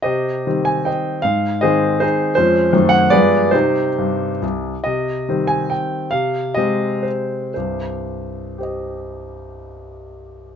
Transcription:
0.02 C3 G4 C5 D#5
0.47 D#3 G3 C4
0.65 G#5
0.85 C5 D#5 G5
1.22 G#2 F5
1.61 D#3 G#3 C4 G#4 C5 D#5
2.00 D#4 G#4 C5
2.35 F2 F3 G#3 C#4 C5
2.73 F#2 D#3 A3 C4
2.89 F#5
3.10 G2 F3 G#3 B3 G#4 B4 D5
3.51 C3 G3 C4 D#4 G4 C5
3.98 G2
4.42 C2
4.84 C3 D#5
5.29 D#3 G3 C4
5.47 G#5
5.70 G5
6.11 C3 F5
6.54 C3 G#3 C4 D#5
7.03 C5
7.54 C2 G2 C5
8.58 G4 C5
8.63 D#5

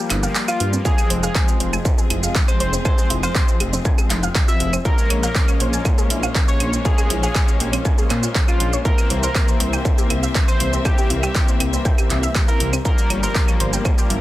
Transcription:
0.10 G1 F3 G3 A#3 E4 E5, clap, open hi-hat, claves
0.23 F5 F6, shaker
0.35 G4 G5, clap, shaker
0.48 F4 F5, claves, shaker
0.60 G2 F3 G3 A#3 F4 F5, open hi-hat
0.73 C4 C5, shaker
0.85 F3 G#3 C4 F4 G#4 F5 G#5, kick, shaker
0.98 claves, shaker
1.10 F1 C5 C6, open hi-hat
1.23 F3 G#3 C4 G#4 F5 G#5 F6, shaker
1.35 C5, kick, clap, claves, shaker
1.48 C5 C6, shaker
1.60 F1 C5 C6, open hi-hat
1.73 G#5 G#6, claves, shaker
1.85 C5 C6, kick, shaker
1.98 G#4 G#5, shaker
2.10 F1 E4 E5, open hi-hat, claves
2.23 F5 F6, shaker
2.35 C5 C6, kick, clap, shaker
2.48 C5 C6, claves, shaker
2.60 F1 C5 C6, open hi-hat
2.73 C4 C5, shaker
2.85 F3 G#3 C4 C5 G#5 C6 G#6, kick, claves, shaker
2.98 G#4 G#5, shaker
3.10 F1 E4 E5, open hi-hat
3.23 F3 G#3 C4 C5 F5 C6 F6, claves, shaker
3.35 G4 G5, kick, clap, shaker
3.48 C5 C6, shaker
3.60 F1 G4 G5, open hi-hat, claves
3.73 C4 C5, shaker
3.85 G#5 G#6, kick, shaker
3.98 G#4 G#5, claves, shaker
4.10 F1 E4 E5, clap, open hi-hat
4.23 F5 F6, shaker
4.35 G4 G5, kick, clap, claves, shaker
4.48 F4 E5 F5 E6, shaker
4.60 F1 F4 F5, open hi-hat
4.73 C4 C5, claves, shaker
4.85 G#3 A#3 C#4 F4 A#4 C5 C#5 F5 A#5, kick, shaker
4.98 shaker
5.10 A#1 C#5 C#6, open hi-hat, claves
5.23 G#3 A#3 C#4 A#4 F5 A#5 F6, shaker
5.35 C5 C6, kick, clap, shaker
5.48 C#5 C#6, claves, shaker
5.60 A#1 C5 C6, open hi-hat
5.73 G#5 G#6, shaker
5.85 C5 C6, kick, claves, shaker
5.98 G#4 G#5, shaker
6.10 A#1 E4 E5, open hi-hat
6.23 F5 F6, claves, shaker
6.35 C5 C6, kick, clap, shaker
6.48 C#5 C#6, shaker
6.60 A#1 C5 C6, open hi-hat, claves
6.73 C4 C5, shaker
6.85 G#3 A#3 C#4 G#4 G#5 G#6, kick, shaker
6.98 G#4 G#5, claves, shaker
7.10 A#1 E4 E5, open hi-hat
7.23 G#3 A#3 C#4 G#4 F5 G#5 F6, shaker
7.35 G4, kick, clap, claves, shaker
7.48 C#5 C#6, shaker
7.60 A#1 G4 G5, open hi-hat
7.73 C4 C5, open hi-hat, claves, shaker
7.85 G#5 G#6, kick, shaker
7.98 G#4 G#5, shaker
8.10 A#2 C4 C5, clap, open hi-hat, claves
8.23 F4 F5, shaker
8.35 C5 C6, kick, clap, shaker
8.48 F4 F5 F6, claves, shaker
8.60 A#1 F5 F6, open hi-hat
8.73 C#5 C#6, shaker
8.85 E3 A#3 C4 E4 G4 A#4 E5 A#5, kick, shaker
8.98 claves, shaker
9.10 C2 C5 C6, open hi-hat
9.23 E3 A#3 C4 A#4 C5 A#5 C6, shaker
9.35 C5 C6, kick, clap, claves, shaker
9.48 C5 C6, shaker
9.60 C2 C5 C6, open hi-hat
9.73 G5 G6, claves, shaker
9.85 C5 C6, kick, shaker
9.98 G4 G5, shaker
10.10 C2 E4 E5, open hi-hat, claves
10.23 E5 E6, shaker
10.35 C5 C6, kick, clap, shaker
10.48 C5 C6, claves, shaker
10.60 C2 C5 C6, open hi-hat
10.73 C4 C5, shaker
10.85 E3 A#3 C4 G4 G5 G6, kick, claves, shaker
10.98 G4 G5, shaker
11.10 C2 E4 E5, open hi-hat
11.23 E3 A#3 C4 G4 E5 G5 E6, claves, shaker
11.35 G4 G5, kick, clap, shaker
11.48 C5 C6, shaker
11.60 C2 G4 G5, open hi-hat, claves
11.73 C4 C5, shaker
11.85 G5 G6, kick, shaker
11.98 G4 G5, claves, shaker
12.10 C2 E4 E5, clap, open hi-hat
12.23 E5 E6, shaker
12.35 G4, kick, clap, claves, shaker
12.48 E4 A#4 E5 A#5, shaker
12.60 C2 E4 E5, open hi-hat
12.73 C4 C5, claves, shaker
12.85 F3 G3 A#3 D4 F4 A#4 F5 A#5, kick, shaker
12.98 shaker
13.10 G1 C#5 C#6, open hi-hat, claves
13.23 F3 G3 A#3 A#4 C5 A#5 C6, shaker
13.35 C5 C6, kick, clap, shaker
13.48 C#5 C#6, claves, shaker
13.60 G1 C5 C6, open hi-hat
13.73 G5 G6, shaker
13.85 C5 C6, kick, claves, shaker
13.98 G4 G5, shaker
14.10 G1 E4 E5, open hi-hat

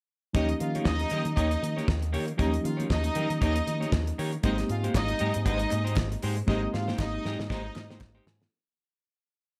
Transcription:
0.33 D#2 F3 A#3 C#4 D#4 G4 C#5 D#5, kick, closed hi-hat, muted conga, low conga
0.49 muted clean electric guitar stroke, closed hi-hat
0.60 D#3 F4 F5, muted clean electric guitar stroke, closed hi-hat, muted conga
0.75 A#3 D#4 G4 C#5, closed hi-hat, high conga
0.85 D#2 D#4 D#5, kick, snare
0.99 muted clean electric guitar stroke, closed hi-hat, high conga
1.10 D#3 A#3 D#4 G4 D#5, closed hi-hat, low conga
1.25 D#3, muted clean electric guitar stroke, closed hi-hat
1.36 D#2 A#3 D#4 G4 C#5 D#5, kick, closed hi-hat, muted conga
1.51 muted clean electric guitar stroke, closed hi-hat
1.62 D#3, muted clean electric guitar stroke, closed hi-hat, muted conga, high conga
1.77 A#3 D#4 G4 C#5, closed hi-hat, high conga
1.88 D#2, kick, snare
2.02 muted clean electric guitar stroke, closed hi-hat
2.12 D#3 A#3 D#4 G4 C#5, open hi-hat
2.27 muted clean electric guitar stroke, closed hi-hat
2.37 D#2 F3 A#3 C#4 D#4 G4 C#5 D#5, kick, closed hi-hat, muted conga, low conga
2.52 muted clean electric guitar stroke, closed hi-hat
2.64 D#3 F4 F5, muted clean electric guitar stroke, closed hi-hat
2.77 A#3 D#4 G4 C#5, closed hi-hat, high conga
2.89 D#2 D#4 D#5, muted clean electric guitar stroke, kick, snare
3.04 muted clean electric guitar stroke, closed hi-hat, high conga
3.15 D#3 A#3 D#4 G4 D#5, closed hi-hat, muted conga, low conga
3.29 D#3, muted clean electric guitar stroke, closed hi-hat
3.41 D#2 A#3 D#4 G4 C#5 D#5, kick, closed hi-hat, muted conga
3.55 muted clean electric guitar stroke, closed hi-hat
3.66 D#3, muted clean electric guitar stroke, closed hi-hat, muted conga, high conga
3.80 A#3 D#4 G4 C#5, closed hi-hat, high conga
3.92 D#2, kick, snare, muted conga
4.07 muted clean electric guitar stroke, closed hi-hat
4.18 D#3 A#3 D#4 G4 C#5, open hi-hat, muted conga
4.32 muted clean electric guitar stroke, closed hi-hat
4.43 G#1 G#3 A#3 C4 D#4 G4 C5 D#5, kick, closed hi-hat, muted conga, low conga
4.58 muted clean electric guitar stroke, snare, closed hi-hat
4.69 G#2 F4 F5, muted clean electric guitar stroke, closed hi-hat, muted conga
4.84 G#3 D#4 G4 C5, closed hi-hat, high conga
4.94 G#1 D#4 D#5, muted clean electric guitar stroke, kick, snare, clap
5.08 muted clean electric guitar stroke, closed hi-hat, high conga
5.19 G#2 G#3 D#4 G4 D#5, closed hi-hat, low conga
5.34 G#2, muted clean electric guitar stroke, closed hi-hat
5.45 G#1 G#3 D#4 G4 C5 D#5, kick, closed hi-hat, muted conga
5.59 muted clean electric guitar stroke, closed hi-hat
5.70 G#2, muted clean electric guitar stroke, clap, closed hi-hat, high conga
5.84 G#3 D#4 G4 C5, closed hi-hat, high conga
5.96 G#1, kick, snare, clap, muted conga
6.12 muted clean electric guitar stroke, closed hi-hat
6.23 G#2 G#3 D#4 G4 C5, open hi-hat
6.37 muted clean electric guitar stroke, closed hi-hat
6.47 G#1 G#3 A#3 C4 D#4 G4 C5 D#5, kick, snare, low conga
6.63 muted clean electric guitar stroke
6.73 G#2 F4 F5, muted clean electric guitar stroke, snare, muted conga
6.88 G#3 D#4 G4 C5, snare, high conga
6.99 G#1 D#4 D#5, muted clean electric guitar stroke, kick, snare, clap
7.14 muted clean electric guitar stroke, high conga
7.25 G#2 G#3 D#4 G4 D#5, snare, muted conga, low conga
7.39 G#2, muted clean electric guitar stroke, snare
7.50 G#1 G#3 D#4 G4 C5 D#5, kick, snare, muted conga, high conga
7.64 muted clean electric guitar stroke
7.75 G#2, muted clean electric guitar stroke, snare, clap, high conga
7.90 G#3 D#4 G4 C5, snare, high conga
8.01 G#1, kick, snare, clap
8.15 G#3 D#4 G4 C5
8.26 G#2, muted clean electric guitar stroke, snare, muted conga
8.40 muted clean electric guitar stroke, snare

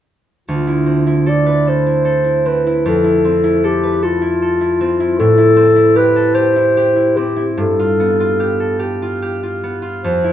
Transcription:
0.48 D2 F4
0.67 E4
0.86 C4
1.07 E4
1.26 A4 D5
1.46 B4
1.67 A4 C5
1.87 E4
2.05 A4
2.24 E4
2.46 C4 B4
2.67 E4
2.86 F2 A4
3.04 E4
3.25 C4
3.44 E4
3.64 G4 A4
3.83 B4
4.03 F4 A4
4.22 E4
4.42 A4
4.61 E4
4.81 C4
5.00 E4
5.19 A2 A4
5.38 E4
5.57 C4
5.76 E4
5.96 G4 B4
6.16 A4
6.34 G4 C5
6.56 E4
6.77 G4
6.96 E4
7.17 C4 G4
7.36 E4
7.57 G2 A4
7.79 F4
8.00 B3
8.20 F4
8.40 G4
8.60 A4
8.79 G4
9.02 F4
9.22 G4
9.43 F4
9.63 B3
9.82 F4
10.04 F2 C5
10.24 E4

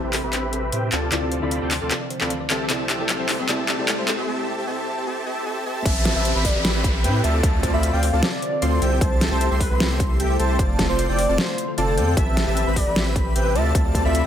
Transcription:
Already playing: A3 C4 E4 G4 B4, riser
0.03 A1 C4 G4 B4 E5 B5
0.13 A4, clap, open hi-hat
0.23 A1 C4 G4 B4 E5 B5
0.33 C5, clap, closed hi-hat
0.43 B4
0.52 A4, closed hi-hat
0.63 G4
0.72 A2 C4 G4 B4 C5 E5 G5, closed hi-hat
0.82 B4
0.92 D2 D3 F3 C4 F4 A4 D5 A5, clap, closed hi-hat
1.02 A4
1.11 D2 D3 C4 E4 F4 A4 D5 F5 A5, clap, closed hi-hat
1.22 D5
1.32 C5, closed hi-hat
1.40 D2 D3 C4 E4 F4 A4 D5 B5
1.51 F5, closed hi-hat
1.62 D2 C4 F4 A4 D5 G5
1.71 C5, clap, open hi-hat
1.81 D2 C4 F4 A4 D5 A5
1.91 F5, clap, closed hi-hat
2.01 D5
2.10 C5, closed hi-hat
2.20 D2 C4 F4 A4 D5 B5, clap
2.30 F5, closed hi-hat
2.40 D5
2.50 C2 C3 A3 C4 E4 G4 A4 E5 A5, clap, closed hi-hat
2.60 G4
2.69 C2 C3 C4 E4 G4 A4 D5 E5 A5, clap, closed hi-hat
2.80 C5
2.89 A4, clap, closed hi-hat
2.98 C2 C3 C4 E4 G4 A4 E5 A5
3.02 D5
3.09 E5, clap, closed hi-hat
3.19 C2 C4 G4 A4 C5 E5 C6
3.29 A4, clap, open hi-hat
3.39 C2 C4 G4 A4 E5 C6
3.48 C2 C3 C4 E4 G4 A4 D5 E5 A5, clap, closed hi-hat
3.59 C5
3.68 A4, clap, closed hi-hat
3.77 C2 C3 C4 E4 G4 A4 E5 A5
3.81 D5
3.88 E5, clap, closed hi-hat
3.98 C2 C4 G4 A4 C5 E5 C6
4.08 A4, clap, closed hi-hat
4.18 C2 C4 G4 A4 E5 C6
4.28 C4 G4 A4 E5 A5
4.58 C4 G4 A4 E5 A5
4.67 C4 G4 A4 E5 A5
4.97 C4 G4 A4 E5 A5
5.06 C4 G4 A4 E5 A5
5.26 C4 G4 A4 E5 A5
5.46 C4 G4 A4 E5 A5
5.66 C4 G4 A4 E5 A5
5.85 A1 C4 G4 B4 C5 E5 A5, kick, closed hi-hat, crash, downlifter
5.96 B4
6.05 A4, snare, closed hi-hat
6.15 A1 C4 G4 B4 E5 A5
6.25 C5, closed hi-hat
6.35 A1 C4 G4 B4 E5 B5
6.44 A4 D5, kick, open hi-hat
6.55 A1 C4 G4 B4 E5 B5
6.64 C5, snare, closed hi-hat
6.75 B4
6.84 A4, kick, closed hi-hat
6.94 G4
7.04 A2 C4 G4 B4 C5 E5 G5, closed hi-hat
7.14 B4
7.23 D2 D3 C4 F4 A4 C5 D5 E5 A5, closed hi-hat
7.34 A4
7.43 D2 C4 F4 A4 D5 F5 A5, kick, closed hi-hat
7.54 D5
7.63 C5, kick, closed hi-hat
7.73 D2 C4 F4 A4 D5 E5 B5
7.83 F5, closed hi-hat
7.93 D2 C4 F4 A4 D5 F5 G5
8.03 C5, open hi-hat
8.13 D2 C4 F4 A4 D5 A5
8.22 D5 F5, snare, closed hi-hat
8.33 D5
8.42 C5, closed hi-hat
8.52 A4
8.62 D2 C4 F4 A4 C5 D5 F5 C6, closed hi-hat
8.72 D5
8.81 C2 C3 A3 C4 E4 G4 A4 E5 G5, closed hi-hat
8.92 G4
9.01 C2 C4 G4 A4 C5 E5 A5, kick, closed hi-hat
9.11 C5
9.21 A4, snare, closed hi-hat
9.31 C2 C4 G4 A4 C5 E5 A5
9.40 E5, closed hi-hat
9.51 C2 C4 G4 A4 C5 E5 C6
9.60 A4 B4, kick, open hi-hat
9.71 C2 C4 G4 A4 E5 C6
9.80 E5, snare, closed hi-hat
9.90 C5
10.00 A4, kick, closed hi-hat
10.10 G4
10.20 C2 C4 G4 A4 E5 G5, closed hi-hat
10.30 C5
10.39 C2 C4 G4 A4 C5 E5 A5, closed hi-hat
10.50 G4
10.59 F1 D3 C4 F4 A4 D5 F5 A5, kick, closed hi-hat
10.69 D5
10.79 C5, kick, snare, closed hi-hat
10.89 F1 C4 F4 A4 C5 D5 C6
10.98 F5, closed hi-hat
11.09 F1 C4 F4 A4 D5 G5
11.18 C5, open hi-hat
11.29 F1 C4 F4 A4 D5 A5
11.38 C5 F5, snare, closed hi-hat
11.48 D5
11.58 C5, closed hi-hat
11.68 A4
11.78 F1 C4 F4 A4 D5 F5 A5, closed hi-hat
11.88 D5
11.97 F2 C4 F4 A4 C5 D5 G5, closed hi-hat
12.08 A4
12.17 A1 C4 G4 B4 C5 E5 A5, kick, closed hi-hat
12.27 B4
12.37 A4, snare, closed hi-hat
12.47 A1 C4 G4 B4 E5 A5
12.56 C5, closed hi-hat
12.67 A1 C4 G4 B4 E5 B5
12.76 A4 D5, kick, open hi-hat
12.87 A1 C4 G4 B4 E5 B5
12.96 C5, snare, closed hi-hat
13.06 B4
13.16 A4, kick, closed hi-hat
13.26 G4
13.35 A1 C4 G4 B4 C5 E5 G5, closed hi-hat
13.46 B4
13.55 D2 D3 C4 F4 A4 C5 D5 E5 A5, closed hi-hat
13.66 A4
13.75 D2 C4 F4 A4 D5 F5 A5, kick, closed hi-hat
13.85 D5
13.95 C5, kick, closed hi-hat
14.05 D2 C4 F4 A4 D5 E5 B5
14.14 F5, closed hi-hat

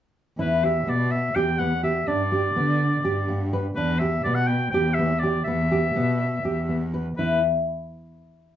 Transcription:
0.38 E2 E4 B4
0.64 G4 E5
0.87 B2 B3 D5
1.11 E5
1.35 E2 G4 G5
1.58 B3 F#5
1.83 G4 E5
2.07 G2 D4 D5
2.32 G4
2.56 D3 B3
3.04 G2 G4
3.29 B3
3.53 B4
3.76 E2 D4 B4
3.99 G4 E5
4.24 B2 B3 D5
4.35 F#5
4.47 G5
4.71 E2 G4 G5
4.94 E5
4.99 B3
5.19 D5
5.23 G4
5.44 E2 B3 E5
5.72 G4
5.96 B2 B3
6.44 E2 G4
6.69 B3
6.94 B4
7.17 E2 E4 B4

